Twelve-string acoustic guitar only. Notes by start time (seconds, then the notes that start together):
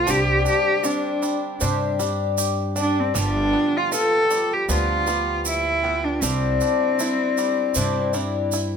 0.07 C3 G3 C4 D4 G4
0.83 G3 C4 D4 G4
1.60 C3 G3 C4 D4 G4
2.00 C4 D4 G4
2.76 C4 D4 G4
3.14 G2 D3 F3 B3 F4 G4
3.92 F3 B3 F4 G4
4.69 G2 D3 F3 B3 F4 G4
5.07 F3 B3 G4
5.83 F3 B3 F4 G4
6.21 C3 G3 C4 D4 E4
6.99 G3 C4 D4 E4
7.75 C3 G3 C4 D4 E4
8.13 C4 D4 E4